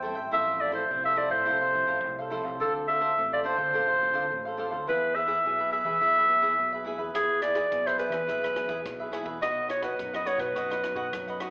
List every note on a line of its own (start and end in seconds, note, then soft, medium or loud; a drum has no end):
0.00 0.13 E2 medium
0.00 0.31 E3 medium
0.00 0.21 G3 soft
0.00 0.17 A4 medium
0.00 0.16 C5 medium
0.04 0.22 C4 medium
0.04 0.22 E4 medium
0.04 0.15 E5 medium
0.04 0.14 G5 medium
0.15 0.30 A1 medium
0.15 0.32 C5 soft
0.15 0.31 E5 soft
0.15 0.30 G5 medium
0.31 0.82 A1 medium
0.31 0.88 A2 soft
0.31 0.86 F3 medium
0.31 0.86 C4 soft
0.31 0.57 E4 medium
0.31 0.86 E4 medium
0.31 0.58 A4 medium
0.31 0.59 C5 medium
0.31 0.62 E5 loud
0.31 0.60 F5 medium
0.59 0.71 E4 soft
0.59 0.71 A4 soft
0.59 0.71 C5 soft
0.59 0.73 D5 medium
0.59 0.72 F5 medium
0.72 0.83 E4 medium
0.72 0.83 A4 medium
0.72 0.83 C5 medium
0.72 1.02 C5 medium
0.72 0.84 F5 medium
0.90 1.27 C2 medium
0.90 1.44 A2 medium
0.90 1.29 F3 soft
0.90 1.29 C4 medium
0.90 1.29 E4 medium
1.03 1.16 A4 soft
1.03 1.16 C5 soft
1.03 1.19 E5 loud
1.03 1.17 F5 soft
1.16 1.31 E4 medium
1.16 1.30 A4 medium
1.16 1.30 C5 medium
1.16 1.30 D5 medium
1.16 1.28 F5 medium
1.30 1.44 A2 medium
1.30 1.70 F3 medium
1.30 1.70 C4 medium
1.30 1.70 E4 medium
1.30 1.45 A4 soft
1.30 1.45 C5 soft
1.30 2.27 C5 medium
1.30 1.44 F5 medium
1.46 1.84 C2 medium
1.46 2.01 A2 medium
1.46 1.60 E4 medium
1.46 1.60 A4 medium
1.46 1.60 C5 medium
1.46 1.59 F5 medium
1.61 1.86 A4 soft
1.61 1.87 C5 soft
1.61 1.87 F5 medium
1.74 2.12 F3 medium
1.74 2.12 C4 medium
1.74 2.12 E4 medium
1.87 2.01 A1 medium
1.87 1.97 E4 medium
1.87 1.98 A4 medium
1.87 1.98 C5 medium
1.87 1.98 F5 medium
2.04 2.40 C2 medium
2.04 2.58 A2 medium
2.19 2.30 A4 soft
2.19 2.31 C5 soft
2.19 2.31 F5 soft
2.30 2.49 F3 medium
2.30 2.49 C4 medium
2.30 2.45 E4 medium
2.30 2.49 E4 medium
2.30 2.44 A4 medium
2.30 2.43 C5 medium
2.30 2.42 F5 medium
2.43 2.58 C2 medium
2.43 2.59 A4 soft
2.43 2.59 C5 soft
2.43 2.58 F5 soft
2.60 3.09 D2 medium
2.60 3.15 D3 soft
2.60 2.98 C4 medium
2.60 2.86 D4 medium
2.60 2.98 F4 medium
2.60 2.73 A4 medium
2.60 2.87 A4 medium
2.60 2.98 A4 medium
2.60 2.88 C5 medium
2.60 2.89 F5 medium
2.87 2.99 D4 soft
2.87 3.00 A4 medium
2.87 3.00 C5 medium
2.87 3.28 E5 medium
2.87 3.01 F5 soft
3.01 3.11 D4 medium
3.01 3.11 A4 medium
3.01 3.12 C5 medium
3.01 3.12 F5 medium
3.18 3.54 A1 medium
3.18 3.72 A2 medium
3.18 3.44 C4 medium
3.18 3.45 F4 medium
3.18 3.45 A4 medium
3.32 3.43 A4 soft
3.32 3.44 C5 soft
3.32 3.39 D5 medium
3.32 3.45 F5 soft
3.44 3.58 D4 medium
3.44 3.58 A4 medium
3.44 4.55 C5 medium
3.44 3.57 C5 medium
3.44 3.55 F5 medium
3.57 3.71 D3 medium
3.57 3.97 C4 medium
3.57 3.97 F4 medium
3.57 3.98 A4 medium
3.57 3.73 A4 soft
3.57 3.72 C5 soft
3.57 3.72 F5 soft
3.73 4.10 A1 medium
3.73 4.29 D3 medium
3.73 3.87 D4 medium
3.73 3.88 A4 medium
3.73 3.88 C5 medium
3.73 3.87 F5 medium
3.88 4.13 A4 soft
3.88 4.13 C5 soft
3.88 4.14 F5 soft
4.02 4.39 C4 medium
4.02 4.39 F4 medium
4.02 4.39 A4 medium
4.13 4.27 D2 medium
4.13 4.24 D4 medium
4.13 4.25 A4 medium
4.13 4.25 C5 medium
4.13 4.25 F5 medium
4.31 4.67 A1 medium
4.31 4.85 A2 medium
4.45 4.57 A4 soft
4.45 4.58 C5 soft
4.45 4.58 F5 medium
4.57 4.83 C4 medium
4.57 4.72 D4 medium
4.57 4.83 F4 medium
4.57 4.72 A4 medium
4.57 4.84 A4 medium
4.57 4.71 C5 medium
4.57 4.69 F5 medium
4.71 4.84 D2 medium
4.71 4.86 A4 soft
4.71 4.86 C5 soft
4.71 4.85 F5 soft
4.87 5.36 E2 loud
4.87 5.42 E3 soft
4.87 5.25 B3 medium
4.87 5.13 E4 medium
4.87 5.25 E4 medium
4.87 5.14 G#4 medium
4.87 5.25 G#4 medium
4.87 5.16 B4 medium
4.87 5.15 B4 medium
4.87 5.16 E5 medium
5.15 5.26 E4 soft
5.15 5.26 G#4 soft
5.15 5.27 B4 medium
5.15 5.72 E5 medium
5.15 5.27 E5 medium
5.27 5.38 E4 medium
5.27 5.38 G#4 medium
5.27 5.38 B4 medium
5.27 5.39 E5 medium
5.44 5.81 B1 medium
5.44 5.99 B2 medium
5.44 5.72 B3 soft
5.44 5.72 E4 medium
5.44 5.72 G#4 medium
5.59 5.71 G#4 soft
5.59 5.72 B4 soft
5.59 5.72 E5 medium
5.71 5.85 E4 medium
5.71 5.86 G#4 medium
5.71 5.85 B4 medium
5.71 6.82 E5 medium
5.71 5.84 E5 medium
5.85 5.98 E3 medium
5.85 6.24 B3 medium
5.85 6.25 E4 medium
5.85 6.25 G#4 medium
5.85 6.00 G#4 soft
5.85 6.00 B4 soft
5.85 5.99 E5 soft
6.01 6.38 B1 medium
6.01 6.56 E3 medium
6.01 6.14 E4 medium
6.01 6.15 G#4 medium
6.01 6.15 B4 medium
6.01 6.15 E5 medium
6.16 6.41 G#4 soft
6.16 6.41 B4 soft
6.16 6.42 E5 soft
6.29 6.66 B3 medium
6.29 6.66 E4 soft
6.29 6.67 G#4 medium
6.42 6.55 E2 medium
6.42 6.52 E4 medium
6.42 6.52 G#4 medium
6.42 6.52 B4 medium
6.42 6.52 E5 medium
6.58 6.94 B1 medium
6.58 7.12 B2 medium
6.73 6.84 G#4 soft
6.73 6.85 B4 soft
6.73 6.86 E5 medium
6.84 7.03 B3 soft
6.84 6.99 E4 medium
6.84 7.03 E4 soft
6.84 6.99 G#4 medium
6.84 7.04 G#4 medium
6.84 6.98 B4 medium
6.84 6.97 E5 medium
6.98 7.12 E2 medium
6.98 7.14 G#4 soft
6.98 7.13 B4 soft
6.98 7.13 E5 soft
7.14 7.63 E2 loud
7.14 7.69 E3 medium
7.14 7.67 B3 medium
7.14 7.40 E4 medium
7.14 7.68 E4 soft
7.14 7.41 G#4 medium
7.14 7.68 G#4 medium
7.14 7.42 B4 medium
7.14 7.43 E5 medium
7.14 kick medium
7.14 cross-stick medium
7.14 closed hi-hat medium
7.42 7.53 E4 soft
7.42 7.54 G#4 soft
7.42 7.54 B4 medium
7.42 7.88 D5 medium
7.42 7.54 E5 soft
7.42 cross-stick medium
7.42 closed hi-hat soft
7.54 7.65 E4 medium
7.54 7.65 G#4 medium
7.54 7.66 B4 medium
7.54 7.66 E5 medium
7.54 kick medium
7.54 cross-stick medium
7.54 closed hi-hat soft
7.72 8.08 B1 medium
7.72 8.26 B2 medium
7.72 8.10 B3 soft
7.72 8.10 E4 medium
7.72 8.10 G#4 medium
7.72 kick medium
7.72 closed hi-hat medium
7.86 7.98 G#4 soft
7.86 7.99 B4 soft
7.86 7.98 C5 medium
7.86 7.99 E5 soft
7.86 cross-stick medium
7.86 closed hi-hat soft
7.98 8.12 E4 medium
7.98 8.13 G#4 medium
7.98 9.09 B4 medium
7.98 8.12 B4 medium
7.98 8.10 E5 medium
7.98 closed hi-hat soft
8.10 8.24 E3 medium
8.10 8.51 B3 soft
8.10 8.52 E4 medium
8.10 8.52 G#4 medium
8.10 8.27 B4 soft
8.10 8.26 E5 soft
8.10 kick medium
8.10 cross-stick medium
8.10 closed hi-hat soft
8.14 8.27 G#4 soft
8.27 8.65 B1 medium
8.27 8.83 E3 medium
8.27 8.41 E4 medium
8.27 8.42 G#4 medium
8.27 8.42 B4 medium
8.27 8.42 E5 medium
8.27 kick medium
8.27 closed hi-hat medium
8.43 8.68 G#4 soft
8.43 8.68 B4 soft
8.43 8.68 E5 soft
8.43 cross-stick medium
8.43 closed hi-hat soft
8.55 9.09 B3 medium
8.55 9.09 E4 medium
8.55 9.09 G#4 medium
8.55 cross-stick medium
8.55 closed hi-hat soft
8.66 8.81 E2 medium
8.66 8.79 E4 medium
8.66 8.79 G#4 medium
8.66 8.79 B4 medium
8.66 8.80 E5 medium
8.66 kick medium
8.66 closed hi-hat soft
8.85 9.22 B1 medium
8.85 9.39 B2 medium
8.85 kick medium
8.85 cross-stick medium
8.85 closed hi-hat medium
9.00 9.12 G#4 soft
9.00 9.13 B4 soft
9.00 9.13 E5 medium
9.12 9.37 B3 medium
9.12 9.26 E4 medium
9.12 9.37 E4 medium
9.12 9.26 G#4 medium
9.12 9.37 G#4 medium
9.12 9.25 B4 medium
9.12 9.24 E5 medium
9.12 cross-stick medium
9.12 closed hi-hat soft
9.23 9.38 E2 medium
9.23 9.41 B4 soft
9.23 9.40 E5 medium
9.23 kick medium
9.28 9.41 G#4 soft
9.41 9.91 B1 medium
9.41 9.96 B2 soft
9.41 9.95 B3 medium
9.41 9.95 D#4 soft
9.41 9.67 F#4 medium
9.41 9.95 F#4 medium
9.41 9.68 B4 medium
9.41 9.69 D#5 loud
9.41 9.69 D#5 medium
9.41 9.70 F#5 medium
9.41 kick medium
9.41 cross-stick medium
9.41 closed hi-hat medium
9.68 9.81 F#4 medium
9.68 9.81 B4 soft
9.68 9.83 C#5 medium
9.68 9.81 D#5 medium
9.68 9.82 F#5 medium
9.68 cross-stick medium
9.68 closed hi-hat soft
9.82 9.92 F#4 medium
9.82 9.93 B4 medium
9.82 10.11 B4 medium
9.82 9.93 D#5 medium
9.82 9.93 F#5 medium
9.82 kick medium
9.82 cross-stick medium
9.82 closed hi-hat soft
9.99 10.53 F#2 medium
9.99 10.36 F#2 medium
9.99 10.26 B3 medium
9.99 10.26 D#4 soft
9.99 10.26 F#4 medium
9.99 kick medium
9.99 closed hi-hat medium
10.13 10.25 B4 soft
10.13 10.26 D#5 soft
10.13 10.28 D#5 medium
10.13 10.26 F#5 medium
10.13 cross-stick medium
10.13 closed hi-hat soft
10.25 10.40 F#4 medium
10.25 10.39 B4 medium
10.25 10.42 C#5 medium
10.25 10.39 D#5 medium
10.25 10.37 F#5 medium
10.25 closed hi-hat medium
10.37 10.51 B2 medium
10.37 10.79 B3 medium
10.37 10.79 D#4 medium
10.37 10.79 F#4 medium
10.37 11.41 B4 medium
10.37 10.54 B4 soft
10.37 10.54 D#5 soft
10.37 10.53 F#5 medium
10.37 kick medium
10.37 cross-stick medium
10.37 closed hi-hat soft
10.55 10.93 F#2 medium
10.55 11.10 B2 medium
10.55 10.69 F#4 medium
10.55 10.69 B4 medium
10.55 10.70 D#5 medium
10.55 10.69 F#5 medium
10.55 kick medium
10.55 closed hi-hat medium
10.70 10.94 B4 soft
10.70 10.95 D#5 soft
10.70 10.95 F#5 medium
10.70 cross-stick medium
10.70 closed hi-hat soft
10.83 11.36 B3 soft
10.83 11.37 D#4 soft
10.83 11.37 F#4 medium
10.83 cross-stick medium
10.83 closed hi-hat medium
10.94 11.08 B1 medium
10.94 11.06 F#4 medium
10.94 11.06 B4 medium
10.94 11.07 D#5 medium
10.94 11.07 F#5 medium
10.94 kick medium
11.13 11.50 F#2 medium
11.13 kick medium
11.13 cross-stick medium
11.13 closed hi-hat medium
11.27 11.40 B4 soft
11.27 11.41 D#5 soft
11.27 11.41 F#5 soft
11.27 closed hi-hat soft
11.40 11.50 B3 medium
11.40 11.50 D#4 medium
11.40 11.50 F#4 medium
11.40 11.50 B4 medium
11.40 11.50 D#5 medium
11.40 11.50 F#5 medium
11.40 cross-stick medium
11.40 closed hi-hat soft